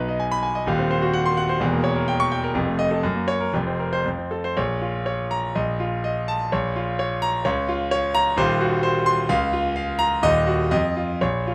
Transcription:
grand piano
Already playing: B1 D#4 B4
0.09 D#5
0.20 G#5
0.31 B5
0.43 G#5
0.55 D#5
0.66 D#1 D#2
0.79 C4
0.91 C5
1.02 F#4
1.13 F#5
1.26 C6
1.37 F#5
1.49 C5
1.60 E1 E2
1.72 A#3
1.84 C#5
1.96 A#4
2.08 G5
2.20 C#6
2.32 G5
2.44 A#4
2.54 F1 F2
2.67 A3
2.79 D#5
2.91 A4
3.03 F#2
3.15 A#3
3.28 C#5
3.41 A#4
3.53 F1 F2
3.67 C4
3.79 A#4
3.93 C5
4.06 F2
4.18 C4
4.31 A4
4.44 C5
4.57 A#1 C#5
4.82 F4
5.06 C#5
5.31 A#5
5.55 A#1 D#5
5.80 F4
6.04 D#5
6.28 A5
6.52 A#1 C#5
6.76 F4
6.99 C#5
7.22 A#5
7.45 C#2 C#5
7.68 F4
7.91 C#5
8.15 A#5
8.37 D#1 D#2 C5
8.61 F#4
8.83 C5
9.06 C6
9.29 C#2 F5
9.53 F4
9.76 F5
9.99 A#5
10.22 D#1 D#2 D#5
10.47 F#4
10.71 F2 D#5
10.96 F4
11.21 A#1 C#5
11.47 F4

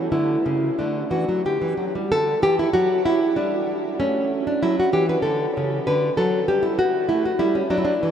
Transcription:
nylon-string guitar
0.12 D3 A3 E4
0.46 C#3
0.79 D3 A3 D4
1.11 E3 F#4
1.29 F#3
1.45 D3 G4
1.62 E3
1.77 F#3
1.95 G3
2.12 D3 A4
2.42 E3 G4
2.59 E4
2.73 F#3 F#4
3.06 E4
3.36 G3 D4
4.00 A3 C#4
4.47 D4
4.63 F#3 E4
4.80 F#4
4.93 E3 G4
5.09 B4
5.22 D3 A4
5.57 C#3
5.87 D3 B4
6.17 F#3 A4
6.48 G3 G4
6.63 E4
6.79 F#4
7.09 A3 E4
7.25 F#4
7.39 G3 E4
7.55 C#4
7.70 F#3 D4
7.78 E4
7.85 D4
8.03 E3

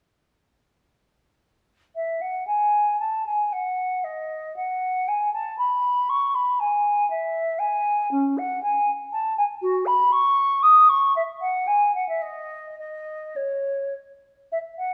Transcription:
flute
1.95 E5
2.21 F#5
2.47 G#5
3.00 A5
3.26 G#5
3.52 F#5
4.04 D#5
4.56 F#5
5.08 G#5
5.33 A5
5.58 B5
6.09 C#6
6.34 B5
6.59 G#5
7.10 E5
7.59 G#5
8.11 C#4
8.37 F#5
8.62 G#5
9.12 A5
9.37 G#5
9.62 F#4
9.86 B5
10.12 C#6
10.62 D#6
10.89 C#6
11.16 E5
11.41 F#5
11.67 G#5
11.94 F#5
12.08 E5
12.22 D#5
12.78 D#5
13.36 C#5
14.51 E5
14.78 F#5

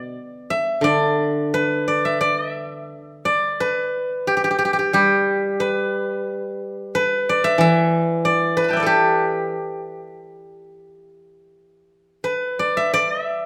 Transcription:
guzheng
Already playing: B2 B4 D5
0.50 E5
0.81 D3 D5
1.54 B4
1.88 D5
2.05 E5
2.21 D5
2.51 E5
3.25 D5
3.60 B4
4.27 G4
4.37 G4
4.44 G4
4.51 G4
4.59 G4
4.65 G4
4.73 G4
4.79 G4
4.93 G3 G4
5.60 B4
6.95 B4
7.29 D5
7.44 E5
7.58 E3 E5
8.25 D5
8.57 B4
8.64 B5
8.68 G5 A5
8.73 D5 E5
8.80 A4 B4
8.86 G4
12.24 B4
12.59 D5
12.77 E5
12.94 D5
13.24 E5

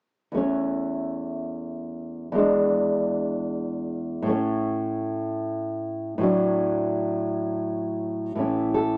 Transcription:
nylon-string guitar
0.32 E2 A3
0.37 C#4
2.32 E2 G#3
2.38 D4
4.22 A2 A3
4.29 C#4
6.18 A2 F#3
6.23 D4
8.35 A2 E3
8.40 C#4
8.74 A4

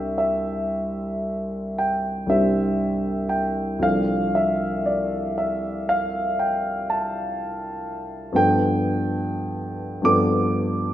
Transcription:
grand piano
Already playing: C2 G3 D4 G4 C5 E5 G5
0.18 E5
1.78 G5
2.26 C2 G3 D4 G4 E5
2.30 C5
3.29 G5
3.79 C2 F3 D4 A4 F5
4.35 E5
4.86 D5
5.38 E5
5.89 F5
6.39 G5
6.90 A5
8.32 G2 F3 B3 D4 A4 G5
10.02 G2 F3 B3 D4 A4 D6

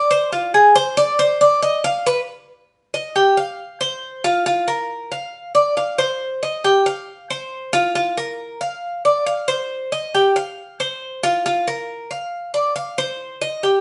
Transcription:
cuban tres
0.11 C5
0.32 F4
0.54 G#4
0.75 C5
0.97 D5
1.19 C5
1.41 D5
1.62 D#5
1.84 F5
2.06 B4
2.94 D#5
3.16 G4
3.37 F5
3.81 C5
4.24 F4
4.46 F4
4.68 A#4
5.12 F5
5.55 D5
5.77 F5
5.98 C5
6.43 D#5
6.64 G4
6.86 F5
7.30 C5
7.73 F4
7.95 F4
8.17 A#4
8.61 F5
9.05 D5
9.26 F5
9.48 C5
9.92 D#5
10.15 G4
10.36 F5
10.80 C5
11.23 F4
11.46 F4
11.68 A#4
12.11 F5
12.54 D5
12.76 F5
12.98 C5
13.42 D#5
13.63 G4

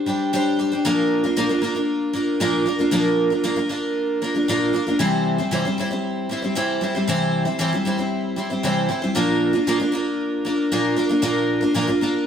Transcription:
twelve-string acoustic guitar
0.06 G3 D4 G4 C5
0.33 G3 D4 G4 C5
0.59 G3 D4 G4 C5
0.72 D4 G4 C5
0.85 A#2 F3 A#3 D4 F4 A#4
1.24 A#3 D4 F4 A#4
1.37 A#2 F3 A#3 D4 F4 A#4
1.49 A#3 D4 F4 A#4
1.62 A#3 D4 F4 A#4
1.75 A#3 D4 F4 A#4
2.13 A#3 D4 F4 A#4
2.40 A#2 F3 A#3 D4 F4 A#4
2.66 A#3 D4 F4 A#4
2.79 A#3 D4 F4 A#4
2.91 A#2 F3 A#3 D4 F4 A#4
3.30 A#3 D4 F4 A#4
3.44 A#2 F3 A#3 D4 F4 A#4
3.56 A#3 D4 F4 A#4
3.69 A#3 D4 F4 A#4
4.22 A#3 D4 F4 A#4
4.35 A#3 D4 F4 A#4
4.48 A#2 F3 A#3 D4 F4 A#4
4.73 A#3 D4 F4 A#4
4.87 A#3 D4 F4 A#4
4.99 C3 E3 G3 C4 E4 C5
5.38 G3 C4 E4 C5
5.51 C3 E3 G3 C4 E4 C5
5.65 G3 C4 E4 C5
5.78 G3 C4 E4 C5
5.91 G3 C4 E4 C5
6.29 G3 C4 E4 C5
6.42 G3 C4 E4 C5
6.55 C3 E3 G3 C4 E4 C5
6.81 G3 C4 E4 C5
6.95 G3 C4 E4 C5
7.08 C3 E3 G3 C4 E4 C5
7.45 G3 C4 E4 C5
7.59 C3 E3 G3 C4 E4 C5
7.73 G3 C4 E4 C5
7.85 G3 C4 E4 C5
7.98 G3 C4 E4 C5
8.36 G3 C4 E4 C5
8.50 G3 C4 E4 C5
8.63 C3 E3 G3 C4 E4 C5
8.89 G3 C4 E4 C5
9.02 G3 C4 E4 C5
9.15 A#2 F3 A#3 D4 F4 A#4
9.53 A#3 D4 F4 A#4
9.67 A#2 F3 A#3 D4 F4 A#4
9.80 A#3 D4 F4 A#4
9.92 A#3 D4 F4 A#4
10.45 A#3 D4 F4 A#4
10.72 A#2 F3 A#3 D4 F4 A#4
10.96 A#3 D4 F4 A#4
11.09 A#3 D4 F4 A#4
11.22 A#2 F3 A#3 D4 F4 A#4
11.61 A#3 D4 F4 A#4
11.74 A#2 F3 A#3 D4 F4 A#4
11.87 A#3 D4 F4 A#4
12.01 A#3 D4 F4 A#4

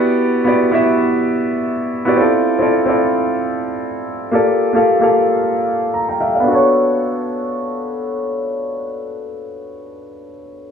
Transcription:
grand piano
Already playing: B3 E4 F#4 G4 D5
0.44 B3 E4 F#4 G4 D5
0.71 B3 E4 F#4 G4 E5
2.05 B3 E4 F#4 G4 D5
2.17 C4 E4 F4 A4 D5
2.59 C4 E4 F4 A4 D5
2.86 C4 E4 F4 A4 D5
4.31 A#3 F4 G4 A4 D5
4.73 A#3 F4 G4 A4 F5
5.00 A#3 F4 G4 A4 F5
5.94 A#5
6.09 G5 A#5
6.21 E5 F5 G5
6.35 D5 F5
6.40 B3 D4
6.47 F#4 A4
6.55 C#5

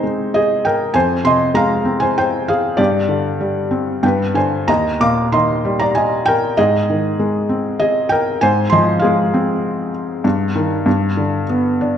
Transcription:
felt piano
Already playing: C3 G#3 C4 D#4 G#4 C5 D#5
0.03 G#3
0.34 G#4 D#5
0.65 A#4 G5
0.94 F2 C5 G#5
1.24 C3 D#5 C6
1.54 G#3 F5 A#5
1.85 C4
2.00 C5 G#5
2.18 C5 G5
2.48 G#4 F5
2.77 G2 G4 D5
3.09 D3
3.41 G3
3.71 C4
4.03 G2 B4 G5
4.34 D3 C5 G#5
4.68 D#2 D#5 A#5
5.00 A#2 F5 D6
5.32 D#3 D#5 C6
5.65 G3
5.80 D5 A#5
5.95 D#5 G#5
6.26 A#4 G5
6.57 G#2 G#4 D#5
6.90 D#3
7.19 G#3
7.49 C4
7.80 G#4 D#5
8.09 A#4 G5
8.41 G#2 C5 G#5
8.70 F3 D#5 C6
8.99 G#4 F5
9.04 G#3
9.34 C4
10.24 G2
10.55 D#3
10.86 G2
11.17 D3
11.50 B3
11.81 D4

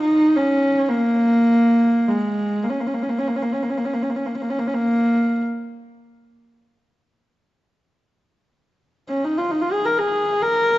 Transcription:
horsehead fiddle
0.01 D#4
0.36 C#4
0.89 A#3
2.08 G#3
2.64 A#3
2.70 C#4
2.80 A#3
2.87 C#4
2.94 A#3
3.03 C#4
3.09 A#3
3.19 C#4
3.28 A#3
3.36 C#4
3.43 A#3
3.53 C#4
3.63 A#3
3.70 C#4
3.78 A#3
3.85 C#4
3.94 A#3
4.02 C#4
4.10 A#3
4.16 C#4
4.26 A#3
4.35 C#4
4.42 A#3
4.50 C#4
4.59 A#3
4.67 C#4
4.74 A#3
9.08 C#4
9.24 D#4
9.38 F4
9.51 D#4
9.61 F4
9.72 G#4
9.85 A#4
9.98 G#4
10.42 A#4

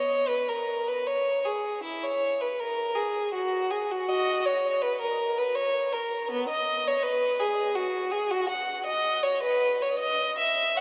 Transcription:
violin
Already playing: C#5
0.28 B4
0.49 A#4
0.88 B4
1.07 C#5
1.45 G#4
1.83 E4
2.03 C#5
2.41 B4
2.59 A#4
2.95 G#4
3.33 F#4
3.70 G#4
3.91 F#4
4.09 F#4 D#5
4.45 C#5
4.82 B4
5.01 A#4
5.38 B4
5.55 C#5
5.92 A#4
6.31 B3
6.48 D#5
6.87 C#5
7.03 B4
7.40 G#4
7.75 F#4
8.11 G#4
8.31 F#4
8.49 F#5
8.86 D#5
9.23 C#5
9.42 B4
9.82 C#5
9.99 D#5
10.38 E5
10.77 C#5 F#5

